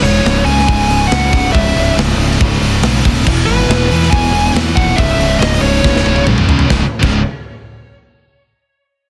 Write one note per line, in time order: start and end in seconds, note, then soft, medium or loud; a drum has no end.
0.02 0.21 E1 medium
0.02 0.25 C#2 loud
0.02 0.24 G#2 medium
0.02 0.26 C#3 loud
0.02 0.42 C#5 loud
0.02 open hi-hat medium
0.25 0.43 C#1 medium
0.25 0.47 C#2 medium
0.25 0.47 G#2 medium
0.25 0.47 C#3 medium
0.25 snare loud
0.25 open hi-hat loud
0.45 0.65 C#2 medium
0.45 0.66 C#2 medium
0.45 0.66 G#2 medium
0.45 0.67 C#3 loud
0.45 1.06 G#5 loud
0.45 open hi-hat medium
0.59 snare soft
0.67 1.05 C#1 loud
0.67 0.88 C#2 loud
0.67 0.89 G#2 loud
0.67 0.89 C#3 loud
0.67 kick loud
0.67 open hi-hat medium
0.89 1.08 C#2 medium
0.89 1.09 G#2 loud
0.89 1.10 C#3 loud
0.89 open hi-hat medium
1.08 1.30 C#2 medium
1.08 1.30 C#2 loud
1.08 1.30 G#2 loud
1.08 1.31 C#3 loud
1.08 1.49 F#5 loud
1.12 snare loud
1.32 1.51 C#1 medium
1.32 1.52 C#2 medium
1.32 1.52 G#2 medium
1.32 1.52 C#3 loud
1.32 kick medium
1.32 open hi-hat medium
1.53 1.72 C#1 loud
1.53 1.74 C#2 loud
1.53 1.74 G#2 loud
1.53 1.75 C#3 loud
1.53 1.93 E5 medium
1.53 kick loud
1.53 open hi-hat loud
1.75 1.94 C#1 loud
1.75 1.94 C#2 medium
1.75 1.95 G#2 medium
1.75 1.96 C#3 loud
1.75 open hi-hat medium
1.96 2.14 C#1 loud
1.96 2.17 C#2 medium
1.96 2.18 G#2 medium
1.96 2.18 C#3 loud
1.96 snare loud
1.96 open hi-hat loud
2.17 2.36 C#1 loud
2.17 2.39 C#2 medium
2.17 2.39 G#2 medium
2.17 2.39 C#3 loud
2.17 open hi-hat medium
2.31 snare soft
2.40 2.59 C#1 loud
2.40 2.60 C#2 loud
2.40 2.61 G#2 loud
2.40 2.61 C#3 loud
2.40 kick loud
2.60 2.79 C#1 loud
2.60 2.82 C#2 loud
2.60 2.82 G#2 loud
2.60 2.82 C#3 loud
2.60 open hi-hat medium
2.82 3.01 B1 loud
2.82 3.04 C#2 loud
2.82 3.03 G#2 loud
2.82 3.04 C#3 loud
2.82 snare loud
2.82 open hi-hat loud
3.04 3.23 D#1 medium
3.04 3.24 C#2 medium
3.04 3.24 G#2 medium
3.04 3.24 C#3 medium
3.04 kick medium
3.04 open hi-hat medium
3.24 3.45 E1 loud
3.24 3.45 E2 loud
3.24 3.45 B2 loud
3.24 3.46 E3 loud
3.24 kick loud
3.24 crash loud
3.46 3.66 G#1 medium
3.46 3.66 E2 medium
3.46 3.66 B2 medium
3.46 3.68 E3 loud
3.46 4.07 B4 loud
3.46 open hi-hat medium
3.67 3.87 E1 loud
3.67 3.88 E2 medium
3.67 3.88 B2 medium
3.67 3.89 E3 loud
3.67 snare loud
3.89 4.09 E2 medium
3.89 4.10 B2 medium
3.89 4.10 E3 medium
3.89 open hi-hat medium
4.03 snare soft
4.10 4.49 E1 loud
4.10 4.30 E2 loud
4.10 4.31 B2 loud
4.10 4.31 E3 loud
4.10 4.51 G#5 loud
4.10 kick loud
4.10 open hi-hat medium
4.31 4.52 E2 medium
4.31 4.51 B2 medium
4.31 4.53 E3 loud
4.31 open hi-hat medium
4.53 4.72 E2 medium
4.53 4.73 E2 loud
4.53 4.73 B2 loud
4.53 4.74 E3 loud
4.53 snare loud
4.53 open hi-hat medium
4.74 4.95 D#1 medium
4.74 4.94 E2 loud
4.74 4.95 B2 loud
4.74 4.96 E3 medium
4.74 4.98 F#5 loud
4.74 kick medium
4.74 open hi-hat medium
4.95 5.16 C#1 loud
4.95 5.16 C#2 loud
4.95 5.17 G#2 loud
4.95 5.18 C#3 loud
4.95 5.39 E5 loud
4.95 kick loud
4.95 open hi-hat medium
5.17 5.37 C#1 loud
5.17 5.38 C#2 medium
5.17 5.38 G#2 medium
5.17 5.38 C#3 loud
5.17 open hi-hat medium
5.39 5.59 C#1 medium
5.39 5.59 C#2 medium
5.39 5.59 G#2 medium
5.39 5.59 C#3 medium
5.39 5.61 D#5 loud
5.39 snare loud
5.39 open hi-hat loud
5.60 5.81 C#1 loud
5.60 5.80 C#2 medium
5.60 5.81 G#2 medium
5.60 5.81 C#3 loud
5.60 6.22 C#5 medium
5.60 open hi-hat medium
5.81 6.03 C#1 loud
5.81 6.01 C#2 loud
5.81 6.01 G#2 loud
5.81 6.01 C#3 loud
5.81 kick loud
5.81 snare medium
5.96 snare medium
6.02 6.24 C#1 loud
6.02 6.23 C#2 medium
6.02 6.24 G#2 medium
6.02 6.24 C#3 medium
6.02 high tom medium
6.07 6.27 C#3 loud
6.16 high tom medium
6.25 6.46 B1 loud
6.25 6.45 C#2 medium
6.25 6.45 G#2 loud
6.25 6.46 C#3 loud
6.25 mid tom loud
6.38 mid tom medium
6.46 6.66 C#2 medium
6.46 6.67 C#2 medium
6.46 6.67 G#2 medium
6.46 6.67 C#3 loud
6.46 floor tom loud
6.59 floor tom loud
6.67 6.81 C#1 loud
6.67 6.81 C#2 medium
6.67 6.81 G#2 loud
6.67 6.82 C#3 loud
6.67 kick loud
6.67 snare loud
7.00 7.22 C#1 medium
7.00 7.18 C#2 loud
7.00 7.19 G#2 loud
7.00 7.19 C#3 loud
7.00 kick loud
7.00 crash medium